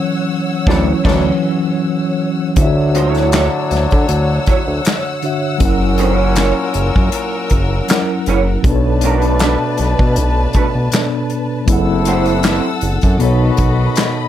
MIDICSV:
0, 0, Header, 1, 8, 480
1, 0, Start_track
1, 0, Key_signature, 2, "major"
1, 0, Tempo, 759494
1, 1622, Time_signature, 4, 2, 24, 8
1, 9027, End_track
2, 0, Start_track
2, 0, Title_t, "String section"
2, 0, Program_c, 0, 48
2, 0, Note_on_c, 0, 73, 84
2, 0, Note_on_c, 0, 78, 75
2, 0, Note_on_c, 0, 88, 91
2, 1595, Note_off_c, 0, 88, 0
2, 1598, Note_off_c, 0, 73, 0
2, 1598, Note_off_c, 0, 78, 0
2, 1617, Note_on_c, 0, 78, 74
2, 1619, Note_on_c, 0, 73, 84
2, 1620, Note_on_c, 0, 88, 86
2, 3521, Note_off_c, 0, 73, 0
2, 3552, Note_on_c, 0, 70, 86
2, 5435, Note_off_c, 0, 78, 0
2, 5436, Note_off_c, 0, 88, 0
2, 5448, Note_off_c, 0, 70, 0
2, 5466, Note_on_c, 0, 71, 88
2, 5469, Note_on_c, 0, 81, 74
2, 7365, Note_off_c, 0, 71, 0
2, 7366, Note_off_c, 0, 81, 0
2, 7386, Note_on_c, 0, 78, 81
2, 7387, Note_on_c, 0, 69, 83
2, 7388, Note_on_c, 0, 88, 91
2, 8334, Note_off_c, 0, 78, 0
2, 8336, Note_off_c, 0, 88, 0
2, 8346, Note_on_c, 0, 75, 76
2, 8349, Note_on_c, 0, 83, 89
2, 9027, Note_off_c, 0, 69, 0
2, 9027, Note_off_c, 0, 75, 0
2, 9027, Note_off_c, 0, 83, 0
2, 9027, End_track
3, 0, Start_track
3, 0, Title_t, "Clean electric guitar"
3, 0, Program_c, 1, 27
3, 425, Note_on_c, 1, 57, 89
3, 428, Note_on_c, 1, 64, 101
3, 431, Note_on_c, 1, 66, 94
3, 435, Note_on_c, 1, 73, 97
3, 590, Note_off_c, 1, 57, 0
3, 591, Note_off_c, 1, 64, 0
3, 593, Note_off_c, 1, 66, 0
3, 595, Note_off_c, 1, 73, 0
3, 656, Note_on_c, 1, 57, 112
3, 661, Note_on_c, 1, 64, 102
3, 664, Note_on_c, 1, 66, 107
3, 666, Note_on_c, 1, 73, 104
3, 825, Note_off_c, 1, 57, 0
3, 828, Note_off_c, 1, 64, 0
3, 829, Note_off_c, 1, 66, 0
3, 830, Note_off_c, 1, 73, 0
3, 1864, Note_on_c, 1, 56, 76
3, 1870, Note_on_c, 1, 63, 86
3, 1871, Note_on_c, 1, 65, 83
3, 1873, Note_on_c, 1, 72, 82
3, 1953, Note_off_c, 1, 56, 0
3, 1953, Note_on_c, 1, 57, 76
3, 1958, Note_off_c, 1, 63, 0
3, 1958, Note_on_c, 1, 64, 86
3, 1960, Note_off_c, 1, 65, 0
3, 1960, Note_on_c, 1, 66, 83
3, 1961, Note_off_c, 1, 72, 0
3, 1961, Note_on_c, 1, 73, 82
3, 2085, Note_off_c, 1, 57, 0
3, 2088, Note_off_c, 1, 64, 0
3, 2089, Note_off_c, 1, 66, 0
3, 2090, Note_off_c, 1, 73, 0
3, 2111, Note_on_c, 1, 57, 79
3, 2117, Note_on_c, 1, 64, 92
3, 2118, Note_on_c, 1, 66, 82
3, 2122, Note_on_c, 1, 73, 89
3, 2192, Note_off_c, 1, 57, 0
3, 2195, Note_off_c, 1, 64, 0
3, 2196, Note_off_c, 1, 66, 0
3, 2198, Note_off_c, 1, 73, 0
3, 2828, Note_on_c, 1, 57, 62
3, 2832, Note_on_c, 1, 64, 66
3, 2835, Note_on_c, 1, 73, 72
3, 2836, Note_on_c, 1, 66, 76
3, 2892, Note_off_c, 1, 57, 0
3, 2894, Note_off_c, 1, 64, 0
3, 2896, Note_off_c, 1, 66, 0
3, 2896, Note_off_c, 1, 73, 0
3, 3786, Note_on_c, 1, 60, 95
3, 3786, Note_on_c, 1, 63, 87
3, 3790, Note_on_c, 1, 69, 88
3, 3793, Note_on_c, 1, 72, 89
3, 3875, Note_off_c, 1, 60, 0
3, 3875, Note_off_c, 1, 63, 0
3, 3875, Note_on_c, 1, 61, 95
3, 3875, Note_on_c, 1, 64, 87
3, 3879, Note_off_c, 1, 69, 0
3, 3879, Note_on_c, 1, 70, 88
3, 3881, Note_off_c, 1, 72, 0
3, 3881, Note_on_c, 1, 73, 89
3, 4006, Note_off_c, 1, 61, 0
3, 4006, Note_off_c, 1, 64, 0
3, 4008, Note_off_c, 1, 70, 0
3, 4009, Note_off_c, 1, 73, 0
3, 4031, Note_on_c, 1, 61, 85
3, 4034, Note_on_c, 1, 64, 89
3, 4040, Note_on_c, 1, 73, 91
3, 4041, Note_on_c, 1, 70, 93
3, 4112, Note_off_c, 1, 61, 0
3, 4114, Note_off_c, 1, 64, 0
3, 4117, Note_off_c, 1, 70, 0
3, 4117, Note_off_c, 1, 73, 0
3, 5234, Note_on_c, 1, 61, 89
3, 5235, Note_on_c, 1, 64, 93
3, 5239, Note_on_c, 1, 73, 99
3, 5240, Note_on_c, 1, 70, 90
3, 5314, Note_off_c, 1, 61, 0
3, 5314, Note_off_c, 1, 64, 0
3, 5316, Note_off_c, 1, 73, 0
3, 5317, Note_off_c, 1, 70, 0
3, 5712, Note_on_c, 1, 56, 82
3, 5712, Note_on_c, 1, 61, 99
3, 5717, Note_on_c, 1, 65, 89
3, 5721, Note_on_c, 1, 70, 93
3, 5800, Note_off_c, 1, 56, 0
3, 5800, Note_on_c, 1, 57, 82
3, 5801, Note_off_c, 1, 61, 0
3, 5801, Note_on_c, 1, 62, 99
3, 5805, Note_off_c, 1, 65, 0
3, 5805, Note_on_c, 1, 66, 89
3, 5809, Note_off_c, 1, 70, 0
3, 5809, Note_on_c, 1, 71, 93
3, 5929, Note_off_c, 1, 57, 0
3, 5929, Note_off_c, 1, 62, 0
3, 5932, Note_off_c, 1, 66, 0
3, 5934, Note_off_c, 1, 71, 0
3, 5953, Note_on_c, 1, 57, 73
3, 5957, Note_on_c, 1, 62, 79
3, 5959, Note_on_c, 1, 66, 87
3, 5964, Note_on_c, 1, 71, 91
3, 6033, Note_off_c, 1, 57, 0
3, 6035, Note_off_c, 1, 62, 0
3, 6036, Note_off_c, 1, 66, 0
3, 6039, Note_off_c, 1, 71, 0
3, 6668, Note_on_c, 1, 57, 69
3, 6671, Note_on_c, 1, 62, 63
3, 6673, Note_on_c, 1, 66, 72
3, 6680, Note_on_c, 1, 71, 80
3, 6732, Note_off_c, 1, 57, 0
3, 6734, Note_off_c, 1, 62, 0
3, 6735, Note_off_c, 1, 66, 0
3, 6738, Note_off_c, 1, 71, 0
3, 7631, Note_on_c, 1, 60, 86
3, 7636, Note_on_c, 1, 64, 94
3, 7637, Note_on_c, 1, 69, 109
3, 7641, Note_on_c, 1, 72, 100
3, 7848, Note_off_c, 1, 60, 0
3, 7851, Note_off_c, 1, 64, 0
3, 7852, Note_off_c, 1, 69, 0
3, 7854, Note_off_c, 1, 72, 0
3, 7872, Note_on_c, 1, 60, 83
3, 7873, Note_on_c, 1, 64, 82
3, 7875, Note_on_c, 1, 69, 84
3, 7878, Note_on_c, 1, 72, 89
3, 8000, Note_off_c, 1, 60, 0
3, 8001, Note_off_c, 1, 64, 0
3, 8002, Note_off_c, 1, 69, 0
3, 8004, Note_off_c, 1, 72, 0
3, 9027, End_track
4, 0, Start_track
4, 0, Title_t, "Tine electric piano"
4, 0, Program_c, 2, 4
4, 0, Control_c, 2, 64, 127
4, 0, Note_on_c, 2, 52, 92
4, 0, Note_on_c, 2, 54, 98
4, 0, Note_on_c, 2, 61, 94
4, 426, Note_off_c, 2, 52, 0
4, 426, Note_on_c, 2, 52, 99
4, 430, Note_off_c, 2, 54, 0
4, 430, Note_on_c, 2, 54, 95
4, 433, Note_off_c, 2, 61, 0
4, 433, Note_on_c, 2, 61, 89
4, 590, Note_off_c, 2, 52, 0
4, 593, Note_off_c, 2, 54, 0
4, 594, Note_off_c, 2, 61, 0
4, 667, Note_on_c, 2, 52, 103
4, 671, Note_on_c, 2, 54, 93
4, 671, Note_on_c, 2, 61, 96
4, 831, Note_off_c, 2, 52, 0
4, 833, Note_off_c, 2, 54, 0
4, 833, Note_off_c, 2, 61, 0
4, 1611, Note_on_c, 2, 50, 73
4, 1622, Note_on_c, 2, 62, 68
4, 1630, Control_c, 2, 64, 0
4, 1631, Note_on_c, 2, 64, 57
4, 1644, Note_on_c, 2, 73, 71
4, 1656, Note_on_c, 2, 76, 84
4, 1670, Note_off_c, 2, 64, 0
4, 1672, Note_on_c, 2, 66, 75
4, 1739, Control_c, 2, 64, 127
4, 3272, Note_off_c, 2, 50, 0
4, 3277, Note_off_c, 2, 62, 0
4, 3288, Note_off_c, 2, 73, 0
4, 3294, Note_off_c, 2, 76, 0
4, 3301, Note_on_c, 2, 50, 57
4, 3302, Note_off_c, 2, 66, 0
4, 3306, Note_on_c, 2, 62, 54
4, 3311, Note_on_c, 2, 66, 56
4, 3317, Note_on_c, 2, 73, 54
4, 3323, Note_on_c, 2, 76, 60
4, 3527, Note_on_c, 2, 54, 81
4, 3541, Note_on_c, 2, 61, 73
4, 3542, Note_off_c, 2, 50, 0
4, 3544, Note_off_c, 2, 62, 0
4, 3547, Note_off_c, 2, 66, 0
4, 3549, Control_c, 2, 64, 0
4, 3550, Note_off_c, 2, 73, 0
4, 3550, Note_on_c, 2, 64, 73
4, 3553, Note_off_c, 2, 76, 0
4, 3564, Note_on_c, 2, 70, 68
4, 3573, Note_on_c, 2, 78, 84
4, 3673, Control_c, 2, 64, 127
4, 4949, Note_off_c, 2, 54, 0
4, 4956, Note_off_c, 2, 61, 0
4, 4961, Note_off_c, 2, 64, 0
4, 4968, Note_off_c, 2, 70, 0
4, 4973, Note_off_c, 2, 78, 0
4, 4983, Note_on_c, 2, 54, 58
4, 4991, Note_on_c, 2, 61, 48
4, 4996, Note_on_c, 2, 64, 50
4, 5001, Note_on_c, 2, 70, 48
4, 5007, Note_on_c, 2, 78, 62
4, 5449, Note_on_c, 2, 47, 81
4, 5461, Note_on_c, 2, 59, 68
4, 5463, Note_off_c, 2, 54, 0
4, 5466, Note_off_c, 2, 61, 0
4, 5469, Note_off_c, 2, 64, 0
4, 5471, Control_c, 2, 64, 0
4, 5471, Note_on_c, 2, 62, 77
4, 5472, Note_off_c, 2, 70, 0
4, 5475, Note_off_c, 2, 78, 0
4, 5482, Note_on_c, 2, 69, 69
4, 5495, Note_on_c, 2, 71, 72
4, 5522, Note_off_c, 2, 71, 0
4, 5535, Note_on_c, 2, 73, 86
4, 5583, Control_c, 2, 64, 127
4, 6870, Note_off_c, 2, 47, 0
4, 6876, Note_off_c, 2, 59, 0
4, 6881, Note_off_c, 2, 62, 0
4, 6887, Note_off_c, 2, 69, 0
4, 6902, Note_on_c, 2, 47, 53
4, 6908, Note_on_c, 2, 59, 53
4, 6913, Note_off_c, 2, 73, 0
4, 6914, Note_on_c, 2, 62, 52
4, 6921, Note_on_c, 2, 69, 51
4, 6927, Note_on_c, 2, 74, 67
4, 7368, Note_on_c, 2, 54, 74
4, 7378, Note_on_c, 2, 60, 72
4, 7382, Note_off_c, 2, 47, 0
4, 7385, Note_off_c, 2, 59, 0
4, 7388, Note_off_c, 2, 62, 0
4, 7389, Note_on_c, 2, 64, 77
4, 7390, Control_c, 2, 64, 0
4, 7392, Note_off_c, 2, 69, 0
4, 7395, Note_off_c, 2, 74, 0
4, 7401, Note_on_c, 2, 68, 54
4, 7412, Note_on_c, 2, 78, 89
4, 7435, Note_off_c, 2, 68, 0
4, 7440, Note_on_c, 2, 69, 70
4, 7490, Control_c, 2, 64, 127
4, 8316, Note_off_c, 2, 54, 0
4, 8321, Note_off_c, 2, 60, 0
4, 8326, Note_on_c, 2, 47, 78
4, 8327, Note_off_c, 2, 64, 0
4, 8337, Note_on_c, 2, 59, 72
4, 8338, Note_off_c, 2, 78, 0
4, 8347, Note_on_c, 2, 63, 68
4, 8351, Control_c, 2, 64, 0
4, 8353, Note_off_c, 2, 69, 0
4, 8361, Note_on_c, 2, 69, 67
4, 8372, Note_on_c, 2, 73, 81
4, 8450, Control_c, 2, 64, 127
4, 9027, Note_off_c, 2, 47, 0
4, 9027, Note_off_c, 2, 59, 0
4, 9027, Note_off_c, 2, 63, 0
4, 9027, Note_off_c, 2, 69, 0
4, 9027, Note_off_c, 2, 73, 0
4, 9027, End_track
5, 0, Start_track
5, 0, Title_t, "Trombone section"
5, 0, Program_c, 3, 61
5, 418, Note_on_c, 3, 45, 78
5, 418, Note_on_c, 3, 54, 80
5, 418, Note_on_c, 3, 62, 82
5, 544, Note_off_c, 3, 45, 0
5, 544, Note_off_c, 3, 54, 0
5, 544, Note_off_c, 3, 62, 0
5, 660, Note_on_c, 3, 62, 82
5, 661, Note_on_c, 3, 45, 81
5, 661, Note_on_c, 3, 54, 86
5, 785, Note_off_c, 3, 62, 0
5, 786, Note_off_c, 3, 45, 0
5, 786, Note_off_c, 3, 54, 0
5, 1621, Note_on_c, 3, 45, 70
5, 1621, Note_on_c, 3, 62, 79
5, 1623, Note_on_c, 3, 54, 74
5, 3276, Note_off_c, 3, 45, 0
5, 3277, Note_off_c, 3, 54, 0
5, 3277, Note_off_c, 3, 62, 0
5, 3537, Note_on_c, 3, 61, 79
5, 3538, Note_on_c, 3, 46, 75
5, 3539, Note_on_c, 3, 54, 69
5, 5194, Note_off_c, 3, 61, 0
5, 5195, Note_off_c, 3, 46, 0
5, 5195, Note_off_c, 3, 54, 0
5, 5460, Note_on_c, 3, 57, 77
5, 5461, Note_on_c, 3, 62, 81
5, 5463, Note_on_c, 3, 47, 74
5, 7116, Note_off_c, 3, 57, 0
5, 7117, Note_off_c, 3, 47, 0
5, 7117, Note_off_c, 3, 62, 0
5, 7376, Note_on_c, 3, 64, 77
5, 7377, Note_on_c, 3, 48, 65
5, 7377, Note_on_c, 3, 57, 75
5, 8085, Note_off_c, 3, 48, 0
5, 8085, Note_off_c, 3, 57, 0
5, 8085, Note_off_c, 3, 64, 0
5, 8336, Note_on_c, 3, 51, 65
5, 8337, Note_on_c, 3, 59, 70
5, 8338, Note_on_c, 3, 66, 70
5, 9027, Note_off_c, 3, 51, 0
5, 9027, Note_off_c, 3, 59, 0
5, 9027, Note_off_c, 3, 66, 0
5, 9027, End_track
6, 0, Start_track
6, 0, Title_t, "Analog synth bass"
6, 0, Program_c, 4, 38
6, 425, Note_on_c, 4, 38, 110
6, 590, Note_off_c, 4, 38, 0
6, 665, Note_on_c, 4, 38, 102
6, 830, Note_off_c, 4, 38, 0
6, 1624, Note_on_c, 4, 38, 107
6, 2205, Note_off_c, 4, 38, 0
6, 2347, Note_on_c, 4, 38, 92
6, 2448, Note_off_c, 4, 38, 0
6, 2482, Note_on_c, 4, 50, 100
6, 2567, Note_off_c, 4, 50, 0
6, 2586, Note_on_c, 4, 38, 94
6, 2777, Note_off_c, 4, 38, 0
6, 2953, Note_on_c, 4, 38, 100
6, 3042, Note_off_c, 4, 38, 0
6, 3545, Note_on_c, 4, 30, 113
6, 4126, Note_off_c, 4, 30, 0
6, 4267, Note_on_c, 4, 30, 91
6, 4368, Note_off_c, 4, 30, 0
6, 4399, Note_on_c, 4, 42, 92
6, 4486, Note_off_c, 4, 42, 0
6, 4749, Note_on_c, 4, 30, 109
6, 4939, Note_off_c, 4, 30, 0
6, 5229, Note_on_c, 4, 30, 98
6, 5419, Note_off_c, 4, 30, 0
6, 5464, Note_on_c, 4, 35, 111
6, 6046, Note_off_c, 4, 35, 0
6, 6190, Note_on_c, 4, 35, 99
6, 6289, Note_off_c, 4, 35, 0
6, 6318, Note_on_c, 4, 47, 98
6, 6427, Note_on_c, 4, 35, 99
6, 6437, Note_off_c, 4, 47, 0
6, 6618, Note_off_c, 4, 35, 0
6, 6794, Note_on_c, 4, 35, 89
6, 6882, Note_off_c, 4, 35, 0
6, 7383, Note_on_c, 4, 30, 106
6, 7965, Note_off_c, 4, 30, 0
6, 8105, Note_on_c, 4, 30, 92
6, 8207, Note_off_c, 4, 30, 0
6, 8239, Note_on_c, 4, 42, 95
6, 8326, Note_off_c, 4, 42, 0
6, 8350, Note_on_c, 4, 35, 103
6, 8540, Note_off_c, 4, 35, 0
6, 8589, Note_on_c, 4, 35, 94
6, 8779, Note_off_c, 4, 35, 0
6, 9027, End_track
7, 0, Start_track
7, 0, Title_t, "Muted clean electric guitar strokes"
7, 4992, Note_on_c, 9, 29, 46
7, 5055, Note_off_c, 9, 29, 0
7, 8832, Note_on_c, 9, 29, 36
7, 8895, Note_off_c, 9, 29, 0
7, 9027, End_track
8, 0, Start_track
8, 0, Title_t, "Drums"
8, 422, Note_on_c, 9, 36, 119
8, 440, Note_on_c, 9, 38, 110
8, 485, Note_off_c, 9, 36, 0
8, 503, Note_off_c, 9, 38, 0
8, 663, Note_on_c, 9, 36, 106
8, 665, Note_on_c, 9, 49, 81
8, 682, Note_on_c, 9, 38, 98
8, 726, Note_off_c, 9, 36, 0
8, 728, Note_off_c, 9, 49, 0
8, 745, Note_off_c, 9, 38, 0
8, 1619, Note_on_c, 9, 42, 95
8, 1622, Note_on_c, 9, 36, 118
8, 1682, Note_off_c, 9, 42, 0
8, 1686, Note_off_c, 9, 36, 0
8, 1862, Note_on_c, 9, 42, 71
8, 1926, Note_off_c, 9, 42, 0
8, 1988, Note_on_c, 9, 42, 49
8, 2001, Note_on_c, 9, 38, 42
8, 2051, Note_off_c, 9, 42, 0
8, 2064, Note_off_c, 9, 38, 0
8, 2099, Note_on_c, 9, 42, 85
8, 2111, Note_on_c, 9, 38, 105
8, 2111, Note_on_c, 9, 39, 80
8, 2163, Note_off_c, 9, 42, 0
8, 2174, Note_off_c, 9, 38, 0
8, 2174, Note_off_c, 9, 39, 0
8, 2344, Note_on_c, 9, 42, 75
8, 2370, Note_on_c, 9, 38, 42
8, 2407, Note_off_c, 9, 42, 0
8, 2434, Note_off_c, 9, 38, 0
8, 2469, Note_on_c, 9, 42, 54
8, 2480, Note_on_c, 9, 36, 87
8, 2533, Note_off_c, 9, 42, 0
8, 2543, Note_off_c, 9, 36, 0
8, 2582, Note_on_c, 9, 42, 84
8, 2645, Note_off_c, 9, 42, 0
8, 2821, Note_on_c, 9, 42, 63
8, 2828, Note_on_c, 9, 36, 91
8, 2884, Note_off_c, 9, 42, 0
8, 2891, Note_off_c, 9, 36, 0
8, 3064, Note_on_c, 9, 42, 95
8, 3080, Note_on_c, 9, 38, 113
8, 3080, Note_on_c, 9, 39, 96
8, 3127, Note_off_c, 9, 42, 0
8, 3143, Note_off_c, 9, 38, 0
8, 3144, Note_off_c, 9, 39, 0
8, 3301, Note_on_c, 9, 42, 62
8, 3364, Note_off_c, 9, 42, 0
8, 3541, Note_on_c, 9, 42, 94
8, 3542, Note_on_c, 9, 36, 113
8, 3604, Note_off_c, 9, 42, 0
8, 3605, Note_off_c, 9, 36, 0
8, 3777, Note_on_c, 9, 42, 73
8, 3840, Note_off_c, 9, 42, 0
8, 4016, Note_on_c, 9, 42, 83
8, 4027, Note_on_c, 9, 38, 110
8, 4028, Note_on_c, 9, 39, 90
8, 4079, Note_off_c, 9, 42, 0
8, 4091, Note_off_c, 9, 38, 0
8, 4091, Note_off_c, 9, 39, 0
8, 4259, Note_on_c, 9, 42, 74
8, 4322, Note_off_c, 9, 42, 0
8, 4397, Note_on_c, 9, 36, 87
8, 4460, Note_off_c, 9, 36, 0
8, 4500, Note_on_c, 9, 42, 87
8, 4563, Note_off_c, 9, 42, 0
8, 4737, Note_on_c, 9, 42, 66
8, 4746, Note_on_c, 9, 36, 85
8, 4800, Note_off_c, 9, 42, 0
8, 4809, Note_off_c, 9, 36, 0
8, 4982, Note_on_c, 9, 42, 89
8, 4998, Note_on_c, 9, 38, 114
8, 4999, Note_on_c, 9, 39, 102
8, 5046, Note_off_c, 9, 42, 0
8, 5062, Note_off_c, 9, 38, 0
8, 5062, Note_off_c, 9, 39, 0
8, 5222, Note_on_c, 9, 42, 65
8, 5285, Note_off_c, 9, 42, 0
8, 5461, Note_on_c, 9, 36, 112
8, 5462, Note_on_c, 9, 42, 96
8, 5524, Note_off_c, 9, 36, 0
8, 5525, Note_off_c, 9, 42, 0
8, 5696, Note_on_c, 9, 42, 76
8, 5759, Note_off_c, 9, 42, 0
8, 5825, Note_on_c, 9, 42, 50
8, 5888, Note_off_c, 9, 42, 0
8, 5937, Note_on_c, 9, 42, 81
8, 5948, Note_on_c, 9, 38, 108
8, 5949, Note_on_c, 9, 39, 87
8, 6000, Note_off_c, 9, 42, 0
8, 6011, Note_off_c, 9, 38, 0
8, 6012, Note_off_c, 9, 39, 0
8, 6178, Note_on_c, 9, 42, 77
8, 6204, Note_on_c, 9, 38, 40
8, 6241, Note_off_c, 9, 42, 0
8, 6267, Note_off_c, 9, 38, 0
8, 6315, Note_on_c, 9, 36, 97
8, 6378, Note_off_c, 9, 36, 0
8, 6421, Note_on_c, 9, 42, 89
8, 6484, Note_off_c, 9, 42, 0
8, 6656, Note_on_c, 9, 42, 65
8, 6665, Note_on_c, 9, 36, 94
8, 6719, Note_off_c, 9, 42, 0
8, 6728, Note_off_c, 9, 36, 0
8, 6900, Note_on_c, 9, 42, 92
8, 6916, Note_on_c, 9, 38, 113
8, 6916, Note_on_c, 9, 39, 95
8, 6963, Note_off_c, 9, 42, 0
8, 6979, Note_off_c, 9, 38, 0
8, 6980, Note_off_c, 9, 39, 0
8, 7140, Note_on_c, 9, 42, 61
8, 7203, Note_off_c, 9, 42, 0
8, 7380, Note_on_c, 9, 36, 114
8, 7380, Note_on_c, 9, 42, 104
8, 7443, Note_off_c, 9, 36, 0
8, 7443, Note_off_c, 9, 42, 0
8, 7617, Note_on_c, 9, 42, 79
8, 7681, Note_off_c, 9, 42, 0
8, 7745, Note_on_c, 9, 42, 52
8, 7808, Note_off_c, 9, 42, 0
8, 7856, Note_on_c, 9, 42, 81
8, 7867, Note_on_c, 9, 38, 109
8, 7867, Note_on_c, 9, 39, 87
8, 7919, Note_off_c, 9, 42, 0
8, 7930, Note_off_c, 9, 38, 0
8, 7931, Note_off_c, 9, 39, 0
8, 8097, Note_on_c, 9, 42, 78
8, 8160, Note_off_c, 9, 42, 0
8, 8225, Note_on_c, 9, 42, 53
8, 8236, Note_on_c, 9, 36, 89
8, 8288, Note_off_c, 9, 42, 0
8, 8299, Note_off_c, 9, 36, 0
8, 8342, Note_on_c, 9, 42, 87
8, 8405, Note_off_c, 9, 42, 0
8, 8577, Note_on_c, 9, 42, 66
8, 8586, Note_on_c, 9, 36, 95
8, 8640, Note_off_c, 9, 42, 0
8, 8649, Note_off_c, 9, 36, 0
8, 8820, Note_on_c, 9, 42, 96
8, 8836, Note_on_c, 9, 38, 115
8, 8836, Note_on_c, 9, 39, 98
8, 8883, Note_off_c, 9, 42, 0
8, 8899, Note_off_c, 9, 38, 0
8, 8900, Note_off_c, 9, 39, 0
8, 9027, End_track
0, 0, End_of_file